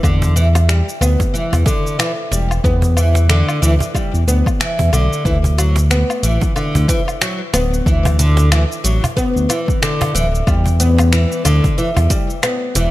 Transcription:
0.03 E2 D3, kick, low woodblock, shaker
0.22 cajon bass, shaker
0.36 E3, shaker
0.55 cajon slap, low woodblock, shaker
0.69 G3, finger snap, shaker
0.89 shaker
1.01 D2 B3, low woodblock, shaker
1.20 cajon bass, kick, cajon slap, shaker
1.34 E3, shaker
1.53 E2, cajon bass, low woodblock, shaker
1.66 D3, kick, cajon slap, shaker
1.87 shaker
1.99 E3, finger snap, low woodblock, shaker
2.31 E1 G3, cajon slap, shaker
2.51 low woodblock, shaker
2.64 E2 B3, kick, shaker
2.82 cajon bass, shaker
2.97 E3, low woodblock, shaker
3.15 cajon slap, shaker
3.29 D3, finger snap, shaker
3.49 low woodblock, shaker
3.62 D2 E3, shaker
3.80 cajon bass, cajon slap, shaker
3.95 G3, kick, low woodblock, shaker
4.14 E2, shaker
4.27 D2 B3, shaker
4.46 kick, low woodblock, shaker
4.60 E3, finger snap, shaker
4.79 E2, cajon bass, cajon slap
4.92 B1 D3, low woodblock, shaker
5.13 shaker
5.25 D2 E3, kick, shaker
5.44 cajon bass, shaker
5.58 F#3, closed hi-hat, low woodblock, shaker
5.76 cajon slap, shaker
5.91 B3, finger snap, shaker
6.10 low woodblock, shaker
6.23 A1 E3, closed hi-hat, shaker
6.41 cajon bass, kick, cajon slap, shaker
6.56 D3, low woodblock, shaker
6.75 D2, cajon bass, shaker
6.88 E3, kick, cajon slap, closed hi-hat, shaker
7.08 low woodblock, shaker
7.21 F#3, finger snap, shaker
7.54 D1 B3, cajon slap, closed hi-hat, low woodblock, shaker
7.74 shaker
7.86 D2 E3, kick, shaker
8.05 cajon bass, low woodblock, shaker
8.19 D3, closed hi-hat, shaker
8.37 cajon slap, shaker
8.52 E3, finger snap, low woodblock, shaker
8.72 shaker
8.84 A1 F#3, closed hi-hat, shaker
9.04 cajon bass, cajon slap, low woodblock, shaker
9.17 B3, kick, shaker
9.36 D2, shaker
9.49 E3, closed hi-hat, low woodblock, shaker
9.68 kick, shaker
9.82 D3, finger snap, shaker
10.01 cajon bass, cajon slap, low woodblock
10.14 D1 E3, closed hi-hat, shaker
10.35 shaker
10.47 E2 G3, kick, low woodblock, shaker
10.66 cajon bass, shaker
10.80 B3, closed hi-hat, shaker
10.98 cajon slap, low woodblock, shaker
11.12 E3, finger snap, shaker
11.32 shaker
11.45 D2 D3, closed hi-hat, low woodblock, shaker
11.64 kick, cajon bass, cajon slap, shaker
11.78 E3, shaker
11.97 E2, cajon bass, low woodblock, shaker
12.10 G3, kick, cajon slap, closed hi-hat, shaker
12.30 shaker
12.43 B3, finger snap, low woodblock, shaker
12.75 E1 E3, cajon slap, closed hi-hat, shaker

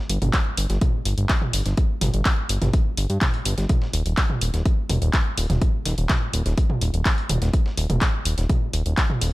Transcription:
0.10 G1, closed hi-hat, open hi-hat
0.22 G1, closed hi-hat, mid tom
0.33 kick, snare, clap, closed hi-hat
0.57 G1, closed hi-hat, open hi-hat
0.70 G1, snare, closed hi-hat
0.81 kick, closed hi-hat, mid tom
1.05 G1, closed hi-hat, open hi-hat
1.18 G1, closed hi-hat
1.29 kick, snare, clap, closed hi-hat
1.42 mid tom
1.53 G1, open hi-hat
1.66 G1, snare, closed hi-hat
1.77 kick, closed hi-hat
2.01 G1, snare, closed hi-hat, mid tom, open hi-hat
2.14 G1, closed hi-hat
2.25 kick, snare, clap, closed hi-hat
2.49 G1, closed hi-hat, open hi-hat
2.62 G1, snare, closed hi-hat, mid tom
2.73 kick, closed hi-hat
2.97 G1, closed hi-hat, open hi-hat
3.10 G2, closed hi-hat
3.21 kick, snare, clap, closed hi-hat, mid tom
3.34 closed hi-hat
3.45 G1, closed hi-hat, open hi-hat
3.58 G1, snare, closed hi-hat
3.69 kick, closed hi-hat, mid tom
3.82 snare
3.93 D#1, closed hi-hat, open hi-hat
4.06 D#1, closed hi-hat
4.17 kick, snare, clap, closed hi-hat
4.30 mid tom
4.41 D#1, closed hi-hat, open hi-hat
4.54 D#1, snare, closed hi-hat
4.66 kick, closed hi-hat
4.89 D#1, closed hi-hat, mid tom, open hi-hat
5.02 D#1, closed hi-hat
5.13 kick, snare, clap, closed hi-hat
5.38 D#1, open hi-hat
5.50 D#1, snare, closed hi-hat, mid tom
5.62 kick, closed hi-hat
5.86 D#1, snare, closed hi-hat, open hi-hat
5.98 D#1, closed hi-hat
6.09 kick, snare, clap, closed hi-hat, mid tom
6.33 D#1, closed hi-hat, open hi-hat
6.46 D#1, snare, closed hi-hat
6.58 kick, closed hi-hat
6.70 mid tom
6.81 D#1, closed hi-hat, open hi-hat
6.94 D#1, closed hi-hat
7.06 kick, snare, clap, closed hi-hat
7.18 closed hi-hat
7.29 D#1, closed hi-hat, mid tom, open hi-hat
7.42 D#1, snare, closed hi-hat
7.54 kick, closed hi-hat
7.66 snare
7.77 D#1, closed hi-hat, open hi-hat
7.90 D#1, closed hi-hat, mid tom
8.02 kick, snare, clap, closed hi-hat
8.25 D#1, closed hi-hat, open hi-hat
8.38 D#1, snare, closed hi-hat
8.49 kick, closed hi-hat, mid tom
8.73 D#1, closed hi-hat, open hi-hat
8.86 D#1, closed hi-hat
8.97 kick, snare, clap, closed hi-hat
9.10 mid tom
9.21 D#1, open hi-hat

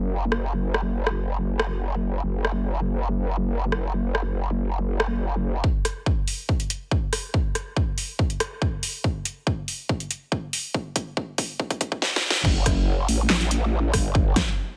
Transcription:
Already playing: F#1
0.32 cross-stick
0.74 cross-stick
1.07 cross-stick
1.60 cross-stick
2.23 F#1
2.45 cross-stick
3.72 cross-stick
4.15 cross-stick
5.00 cross-stick
5.64 kick
5.85 cross-stick, closed hi-hat
6.06 kick
6.28 open hi-hat
6.49 kick
6.60 closed hi-hat
6.70 closed hi-hat
6.91 kick
7.13 cross-stick, open hi-hat
7.34 kick
7.55 cross-stick, closed hi-hat
7.77 kick
7.98 open hi-hat
8.19 kick
8.30 closed hi-hat
8.40 cross-stick, closed hi-hat
8.62 kick
8.83 open hi-hat
9.04 kick
9.25 closed hi-hat
9.47 kick
9.68 open hi-hat
9.89 kick
10.00 closed hi-hat
10.11 closed hi-hat
10.32 kick
10.53 open hi-hat
10.74 kick
10.96 kick, closed hi-hat
11.17 kick
11.38 kick, open hi-hat
11.60 kick
11.70 kick, closed hi-hat
11.81 kick, closed hi-hat
11.92 kick
12.02 snare
12.16 snare
12.30 snare
12.45 F#1, kick, crash
12.66 F#1, kick, cross-stick, closed hi-hat
13.08 A1, open hi-hat
13.30 snare, clap
13.41 closed hi-hat
13.51 closed hi-hat
13.94 G1, kick, cross-stick, open hi-hat
14.15 kick
14.36 kick, cross-stick, snare, closed hi-hat

